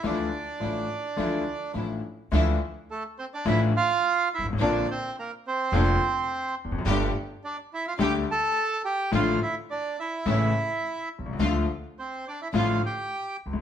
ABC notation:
X:1
M:4/4
L:1/16
Q:1/4=106
K:Dm
V:1 name="Bandoneon"
[Dd]12 z4 | z4 [A,A]2 [Cc] [Dd] [Ee]2 [Ff]4 [Ee]2 | [Dd]2 [Cc]2 [B,B]2 [Cc]8 z2 | z4 [Dd]2 [Ee] [Ff] [Gg]2 [Aa]4 [Gg]2 |
[Ff]2 [Ee]2 [Dd]2 [Ee]8 z2 | z4 [Cc]2 [Dd] [Ee] [Ff]2 [Gg]4 z2 |]
V:2 name="String section"
[F,DE]2 z2 [F,DE]2 z2 [F,DE]2 z2 [F,DE]2 z2 | [F,DE]2 z6 [F,DE]2 z6 | [B,CD]2 z6 [B,CD]2 z6 | [A,DG]2 z6 [A,DG]2 z6 |
[A,DF]2 z6 [A,^CE]2 z6 | [A,DF]2 z6 [A,DF]2 z6 |]
V:3 name="Grand piano" clef=bass
[D,,D,E,A,DF]2 z2 [A,,,A,,E,A,DF]2 z2 [D,,D,E,A,DF]2 z2 [A,,,A,,E,A,DF]2 z2 | [D,,D,E,A,DF]2 z6 [A,,,A,,E,A,DF]2 z4 z/2 G,,,/2 ^G,,,/2 A,,,/2 | [B,,,B,,D,B,CF]2 z6 [F,,,F,,D,B,CF]2 z4 z/2 E,,/2 F,,/2 ^F,,/2 | [G,,,G,,D,G,A,G]2 z6 [D,,D,G,A,G]2 z6 |
[A,,,A,,D,F,A,F]2 z6 [A,,,A,,^C,E,A,E]2 z4 z/2 =B,,,/2 =C,,/2 ^C,,/2 | [D,,D,F,A,F]2 z6 [A,,,A,,D,F,A,F]2 z4 z/2 ^C,,/2 D,,/2 z/2 |]
V:4 name="Upright bass" clef=bass
D,,3/2 z2 z/2 A,,,3/2 z2 z/2 D,,3/2 z2 z/2 A,,,3/2 z2 z/2 | D,,3/2 z6 z/2 A,,,3/2 z4 z G,,,/2 ^G,,,/2 A,,,/2 | B,,,3/2 z6 z/2 F,,,3/2 z4 z E,,,/2 F,,,/2 ^F,,,/2 | G,,,3/2 z6 z/2 D,,3/2 z6 z/2 |
A,,,3/2 z6 z/2 A,,,3/2 z4 z =B,,,/2 C,,/2 ^C,,/2 | D,,3/2 z6 z/2 A,,,3/2 z4 z ^C,,/2 D,,/2 z/2 |]